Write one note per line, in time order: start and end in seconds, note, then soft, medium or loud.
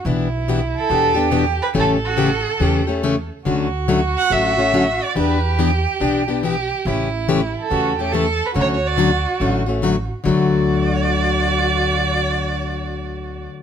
0.05 0.73 B1 medium
0.05 0.27 B2 medium
0.05 0.27 E3 medium
0.05 0.27 B3 medium
0.05 0.27 D4 medium
0.05 0.91 E4 medium
0.05 0.27 G4 medium
0.48 0.59 B2 medium
0.48 0.60 E3 medium
0.48 0.60 B3 medium
0.48 0.60 D4 medium
0.48 0.60 G4 medium
0.76 1.30 A4 loud
0.89 1.58 E2 medium
0.89 1.12 B2 medium
0.89 1.12 E3 medium
0.89 1.12 B3 medium
0.89 1.12 D4 medium
0.89 1.75 G4 medium
0.89 1.12 G4 medium
1.15 1.31 B3 medium
1.15 1.31 D4 medium
1.15 1.31 G4 medium
1.31 1.43 B2 medium
1.31 1.44 E3 medium
1.31 1.44 B3 medium
1.31 1.44 D4 medium
1.31 1.44 G4 medium
1.62 1.69 B4 loud
1.74 2.43 A1 medium
1.74 1.96 C#3 medium
1.74 1.96 E3 medium
1.74 1.96 A3 medium
1.74 1.97 C#4 medium
1.74 1.97 G4 medium
1.74 3.26 A4 medium
1.79 1.91 A4 loud
2.05 2.58 F#4 medium
2.17 2.29 C#3 medium
2.17 2.29 E3 medium
2.17 2.29 A3 medium
2.17 2.29 C#4 loud
2.17 2.29 G4 loud
2.60 3.28 E2 medium
2.60 2.82 C#3 medium
2.60 2.82 E3 medium
2.60 2.82 A3 medium
2.60 2.82 C#4 medium
2.60 2.83 G4 medium
2.87 3.02 A3 soft
2.87 3.03 C#4 soft
2.87 3.03 G4 soft
3.03 3.15 C#3 medium
3.03 3.15 E3 medium
3.03 3.15 A3 medium
3.03 3.15 C#4 medium
3.03 3.15 G4 medium
3.45 4.14 D2 medium
3.45 3.67 D3 medium
3.45 3.67 F#3 medium
3.45 3.67 A3 medium
3.45 3.68 C#4 medium
3.45 5.12 F#4 medium
3.45 3.67 F#4 medium
3.88 4.00 D3 medium
3.88 4.00 F#3 medium
3.88 4.00 A3 medium
3.88 4.00 C#4 loud
3.88 4.00 F#4 loud
4.18 4.34 F#5 loud
4.30 4.99 A1 medium
4.30 4.52 D3 medium
4.30 4.52 F#3 medium
4.30 4.52 A3 medium
4.30 4.52 C#4 medium
4.30 4.53 F#4 medium
4.30 5.05 E5 medium
4.57 4.72 A3 soft
4.57 4.73 C#4 medium
4.57 4.73 F#4 medium
4.73 4.84 D3 medium
4.73 4.85 F#3 medium
4.73 4.85 A3 medium
4.73 4.85 C#4 medium
4.73 4.85 F#4 medium
5.03 5.17 D5 medium
5.15 5.84 E2 medium
5.15 5.37 E3 medium
5.15 5.37 B3 medium
5.15 5.38 D4 medium
5.15 5.38 G4 medium
5.15 6.40 G4 medium
5.15 5.57 B4 medium
5.59 5.70 E3 medium
5.59 5.70 B3 medium
5.59 5.70 D4 medium
5.59 5.71 G4 loud
6.00 6.69 B1 medium
6.00 6.22 E3 medium
6.00 6.22 B3 medium
6.00 6.22 D4 medium
6.00 6.23 G4 medium
6.28 6.43 B3 soft
6.28 6.43 D4 soft
6.28 6.43 G4 soft
6.43 6.55 E3 medium
6.43 6.55 B3 medium
6.43 6.55 D4 medium
6.43 6.88 G4 medium
6.43 6.56 G4 medium
6.85 7.54 A1 medium
6.85 7.08 C#3 medium
6.85 7.08 E3 medium
6.85 7.08 A3 medium
6.85 7.08 C#4 medium
6.85 7.71 E4 medium
6.85 7.08 G4 medium
7.28 7.40 C#3 medium
7.28 7.40 E3 medium
7.28 7.40 A3 medium
7.28 7.40 C#4 medium
7.28 7.40 G4 loud
7.59 8.12 A4 medium
7.70 8.39 E2 medium
7.70 7.92 C#3 medium
7.70 7.92 E3 medium
7.70 7.93 A3 medium
7.70 7.93 C#4 medium
7.70 7.96 F#4 medium
7.70 7.93 G4 medium
7.98 8.13 A3 soft
7.98 8.13 C#4 medium
7.98 8.14 G4 medium
7.98 8.13 G4 medium
8.12 8.25 C#3 medium
8.12 8.25 E3 medium
8.12 8.25 A3 loud
8.12 8.25 C#4 medium
8.12 8.25 G4 medium
8.12 8.55 A4 loud
8.46 8.52 B4 medium
8.54 9.24 D2 medium
8.54 8.77 D3 medium
8.54 8.77 F#3 medium
8.54 8.77 A3 medium
8.54 8.77 C#4 medium
8.54 10.06 F#4 medium
8.54 8.77 F#4 medium
8.61 8.68 C#5 loud
8.75 8.88 C#5 medium
8.87 9.43 D5 medium
8.97 9.09 D3 medium
8.97 9.10 F#3 loud
8.97 9.10 A3 medium
8.97 9.10 C#4 medium
8.97 9.10 F#4 loud
9.40 10.09 A1 medium
9.40 9.62 D3 medium
9.40 9.62 F#3 medium
9.40 9.63 A3 medium
9.40 9.63 C#4 medium
9.40 9.63 F#4 medium
9.66 9.82 A3 soft
9.66 9.82 C#4 soft
9.66 9.83 F#4 medium
9.82 9.94 D3 medium
9.82 9.95 F#3 medium
9.82 9.95 A3 medium
9.82 9.95 C#4 medium
9.82 9.95 F#4 medium
10.24 13.46 D2 medium
10.24 13.63 D3 medium
10.24 13.63 F#3 medium
10.24 13.63 A3 medium
10.24 13.47 F#4 medium
10.28 13.63 F#4 medium
10.28 13.49 D5 medium